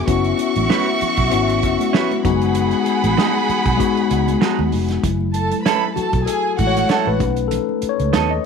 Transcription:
0.06 fingered electric bass F#1, tine electric piano B3 C#4 E4 F#4, violin section F#4 E5 C#6, kick, closed hi-hat, muted conga
0.24 closed hi-hat
0.38 closed hi-hat, muted conga
0.56 fingered electric bass A1, closed hi-hat, high conga
0.70 clean electric guitar C#4 F#4 B4, snare, muted conga, high conga
1.01 muted fingered electric bass stroke, closed hi-hat, low conga
1.17 fingered electric bass B1, kick, closed hi-hat
1.30 fingered electric bass G#1, tine electric piano B3 C#4 E4 F#4, closed hi-hat
1.49 closed hi-hat
1.63 fingered electric bass F#1, kick, closed hi-hat
1.80 closed hi-hat, high conga
1.93 clean electric guitar C#4 F#4 B4, snare
2.11 closed hi-hat, high conga
2.23 fingered electric bass F#1, tine electric piano F#3 B3 D#4 F#4, violin section G#4 F#5 B5, kick, closed hi-hat, muted conga, low conga
2.30 tine electric piano G#3
2.41 closed hi-hat
2.55 closed hi-hat
2.71 closed hi-hat
2.86 closed hi-hat, muted conga
3.04 fingered electric bass A1, closed hi-hat, high conga
3.17 clean electric guitar G#3 D#4 F#4, snare, muted conga, high conga
3.49 muted fingered electric bass stroke, closed hi-hat, low conga
3.66 fingered electric bass B1, kick, closed hi-hat
3.77 tine electric piano G#3 B3 D#4 F#4, kick, closed hi-hat, muted conga
3.97 closed hi-hat
4.11 fingered electric bass C#2, closed hi-hat
4.28 closed hi-hat, high conga
4.41 clean electric guitar G#3 D#4 F#4, snare
4.59 fingered electric bass D#2, high conga
4.72 fingered electric bass F1, open hi-hat, muted conga, low conga
4.89 snare, closed hi-hat
5.03 fingered electric bass F#1, tine electric piano F#3 A3 E4, kick, closed hi-hat, low conga
5.21 high conga
5.34 violin section A4 A5, closed hi-hat
5.51 closed hi-hat, high conga
5.65 clean electric guitar C#4 E4 A4, violin section B4 B5, snare, closed hi-hat, high conga
5.96 tine electric piano F#4, violin section A4 A5, muted fingered electric bass stroke, closed hi-hat, muted conga, low conga
6.13 fingered electric bass B1, kick, closed hi-hat
6.26 violin section G#4 G#5, tine electric piano A4, closed hi-hat, muted conga
6.57 fingered electric bass A1, tine electric piano G#3 A3 E4, violin section F#4 F#5, kick, closed hi-hat, muted conga
6.67 tine electric piano C#5
6.75 snare, closed hi-hat, high conga
6.89 clean electric guitar C#4 E4 A4, snare, closed hi-hat
7.06 fingered electric bass A1, tine electric piano B4, high conga
7.19 fingered electric bass B1, tine electric piano A3 C#4 D#4, kick, closed hi-hat, muted conga, low conga
7.36 closed hi-hat
7.48 tine electric piano A4, closed hi-hat, muted conga, low conga
7.69 high conga
7.82 muted fingered electric bass stroke, closed hi-hat
7.89 tine electric piano C#5
8.00 fingered electric bass C#2, closed hi-hat, high conga
8.13 fingered electric bass D#2, clean electric guitar B3 D#4 A4, snare, closed hi-hat, muted conga, high conga
8.31 tine electric piano D#5

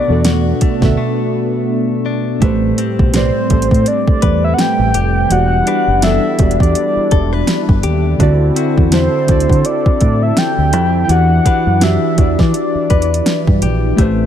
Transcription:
Already playing: synth keys B2 B3 F#4 A4 D5, clean electric guitar B2 A3 D4 F#4, analog synth pad A3 B3 D4, soft synth lead D5
0.07 fingered electric bass E2, synth keys B2 B3 F#4 A4
0.12 synth keys D5
0.25 clean electric guitar F#4, snare, closed hi-hat
0.61 clean electric guitar A3, muted fingered electric bass stroke, kick, closed hi-hat
0.80 fingered electric bass D2, synth keys B2 B3 F#4 A4, kick, snare
0.85 synth keys E5
0.97 clean electric guitar A3
2.06 clean electric guitar D4
2.39 fingered electric bass A1, synth keys A2 A3 G4 B4, analog synth pad G3 A3 C4, clean electric guitar A3, kick, closed hi-hat
2.44 synth keys C5
2.78 clean electric guitar C4 G4, closed hi-hat
2.99 fingered electric bass B1, kick
3.12 synth keys A2 A3 G4 B4, clean electric guitar C4, soft synth lead C5, snare, closed hi-hat
3.17 synth keys D5
3.48 fingered electric bass A1, synth keys A2 A3 G4 A4, kick, closed hi-hat
3.53 synth keys C5
3.62 closed hi-hat
3.71 fingered electric bass A2, kick, closed hi-hat
3.86 soft synth lead D5, closed hi-hat
4.07 muted fingered electric bass stroke, kick
4.22 fingered electric bass E2, clean electric guitar B4, kick, closed hi-hat
4.44 soft synth lead E5
4.54 soft synth lead F#5
4.59 soft synth lead G5, snare, closed hi-hat
4.79 fingered electric bass A1
4.94 fingered electric bass F1, clean electric guitar G4, closed hi-hat
5.29 fingered electric bass E1, synth keys E3 B3 F#4 G4, analog synth pad D4 E4, soft synth lead F#5, closed hi-hat
5.34 synth keys D5
5.67 clean electric guitar D4 G4 B4, closed hi-hat
5.88 fingered electric bass F#1
6.01 synth keys E3 B3 F#4 G4, clean electric guitar D4, soft synth lead E5, snare, closed hi-hat
6.06 synth keys A4
6.37 fingered electric bass E1, synth keys E3 B3 F#4 G4, kick, closed hi-hat
6.42 synth keys D5
6.51 closed hi-hat
6.60 fingered electric bass E2, soft synth lead D5, kick, closed hi-hat
6.75 closed hi-hat
6.96 muted fingered electric bass stroke
7.11 fingered electric bass E1, clean electric guitar A4, kick, closed hi-hat
7.33 clean electric guitar B4
7.47 snare, closed hi-hat
7.69 fingered electric bass G1, kick
7.83 fingered electric bass D#2, clean electric guitar G4, closed hi-hat
8.18 fingered electric bass D2, synth keys D3 C4 E4 F#4, clean electric guitar D3, analog synth pad D3 C4 E4 A4, kick, closed hi-hat
8.22 synth keys D5
8.56 clean electric guitar C4 E4 F#4, closed hi-hat
8.78 fingered electric bass E2, kick
8.90 synth keys D3 C4 E4 F#4, clean electric guitar C4, soft synth lead C5, snare, closed hi-hat
8.95 synth keys E5
9.26 fingered electric bass D2, synth keys D3 C4 E4 F#4, kick, closed hi-hat
9.31 synth keys D5
9.40 closed hi-hat
9.49 fingered electric bass D3, kick, closed hi-hat
9.65 soft synth lead D5, closed hi-hat
9.86 muted fingered electric bass stroke, kick
10.01 fingered electric bass A2, kick, closed hi-hat
10.23 soft synth lead E5
10.37 soft synth lead G5, snare, closed hi-hat
10.58 fingered electric bass D2
10.73 fingered electric bass F2, clean electric guitar E4, closed hi-hat
11.04 synth keys E3 E4, soft synth lead G5
11.09 fingered electric bass E2, clean electric guitar E3, analog synth pad E3 D4 E4, synth keys F#4 G4 D5, soft synth lead F#5, closed hi-hat
11.46 clean electric guitar D4 G4 B4, kick, closed hi-hat
11.67 fingered electric bass F#2
11.79 synth keys E3 E4 F#4 G4, clean electric guitar D4, soft synth lead E5, snare, closed hi-hat
11.84 synth keys E5
12.15 fingered electric bass E2, synth keys E3 E4 F#4 G4, kick, closed hi-hat
12.21 synth keys D5
12.39 fingered electric bass E3, soft synth lead D5, kick, snare
12.54 closed hi-hat
12.75 muted fingered electric bass stroke
12.90 fingered electric bass E2, clean electric guitar B4, kick, closed hi-hat
13.02 closed hi-hat
13.14 closed hi-hat
13.26 snare, closed hi-hat
13.47 fingered electric bass G2, kick
13.62 fingered electric bass A#1, clean electric guitar G4, closed hi-hat
13.96 fingered electric bass A1, synth keys A3 E4 G4 B4, analog synth pad A3 C4, clean electric guitar A3, kick, closed hi-hat
14.01 synth keys C5

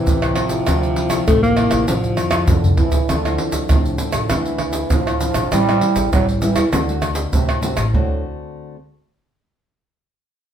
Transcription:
Already playing: trombone C3, alto saxophone E3, nylon-string guitar C4 E4
0.06 upright bass A1, nylon-string guitar A2, pandeiro, shaker, surdo
0.22 pandeiro, tamborim, shaker
0.35 nylon-string guitar F3 C4 E4, alto saxophone F3, pandeiro, tamborim, surdo
0.49 pandeiro, shaker
0.67 upright bass D2, nylon-string guitar D3 F3 C4 E4, pandeiro, tamborim, shaker, surdo
0.83 pandeiro, shaker
0.96 pandeiro
1.10 nylon-string guitar F3 C4 E4, pandeiro, tamborim, shaker, surdo
1.27 upright bass A1, alto saxophone A3, pandeiro, tamborim, shaker, surdo
1.43 alto saxophone A#3, pandeiro, shaker
1.57 nylon-string guitar F3 C4 E4, pandeiro, tamborim
1.71 upright bass A1, pandeiro, tamborim, shaker, surdo
1.88 upright bass A1, nylon-string guitar D3 F3 C4 E4, alto saxophone F3, pandeiro, shaker, surdo
2.04 pandeiro, shaker, surdo
2.17 upright bass F2, pandeiro, tamborim, shaker
2.31 nylon-string guitar F3 C4 E4, pandeiro, tamborim, shaker, surdo
2.48 upright bass E2, nylon-string guitar A2, trombone D3, surdo, pandeiro, shaker
2.64 surdo, pandeiro, shaker
2.77 upright bass D2, trombone E3, nylon-string guitar F3 C4 E4, pandeiro, surdo
2.92 pandeiro, shaker, surdo
3.09 upright bass D2, nylon-string guitar D3 F3 C4 E4, trombone D3, pandeiro, tamborim, shaker, surdo
3.25 nylon-string guitar F3 C4 E4, pandeiro, tamborim, shaker
3.38 pandeiro
3.52 upright bass D2, pandeiro, shaker, surdo
3.69 upright bass D2, nylon-string guitar A2 F3 C4 E4, trombone C3, pandeiro, tamborim, shaker, surdo
3.86 pandeiro, shaker
3.98 trombone D3, nylon-string guitar F3 C4 E4, pandeiro, shaker
4.12 upright bass A1, pandeiro, tamborim, shaker, surdo
4.30 upright bass D2, nylon-string guitar D3, trombone E3, pandeiro, tamborim, shaker, surdo
4.45 nylon-string guitar C4 E4, pandeiro, shaker
4.58 pandeiro, tamborim, surdo
4.73 pandeiro, shaker
4.90 upright bass D2, nylon-string guitar A2 F3 C4 E4, trombone F3, pandeiro, shaker, surdo
5.07 pandeiro, tamborim, shaker
5.20 nylon-string guitar F3 C4 E4, pandeiro, shaker
5.34 upright bass A#1, pandeiro, tamborim, shaker, surdo
5.52 upright bass A1, nylon-string guitar A2 G3 C4 E4, trombone G3, pandeiro, tamborim, shaker, surdo
5.68 nylon-string guitar G3 C4 E4, pandeiro, tamborim, shaker
5.81 pandeiro
5.96 upright bass A1, pandeiro, shaker, surdo
6.13 upright bass A1, nylon-string guitar E3 G3 C4 E4, trombone F#3, pandeiro, tamborim, shaker, surdo
6.29 pandeiro, shaker
6.41 trombone E3, nylon-string guitar G3 C4 E4, pandeiro, shaker
6.56 upright bass E2, pandeiro, tamborim, shaker, surdo
6.73 upright bass D2, trombone D3, nylon-string guitar D3 A3 C4 F#4, pandeiro, tamborim, shaker, surdo
6.89 nylon-string guitar A3 C4 F#4, pandeiro, shaker
7.02 pandeiro, tamborim, shaker, surdo
7.15 pandeiro, shaker
7.33 upright bass D2, nylon-string guitar A2 A3 C4 F#4, trombone C3, pandeiro, shaker, surdo
7.49 pandeiro, tamborim, shaker
7.63 trombone C3, nylon-string guitar A3 C4 F#4, pandeiro, shaker
7.77 upright bass A1, pandeiro, tamborim, shaker, surdo
7.94 upright bass D2, trombone A2, nylon-string guitar D3 A3 C4 F#4, surdo

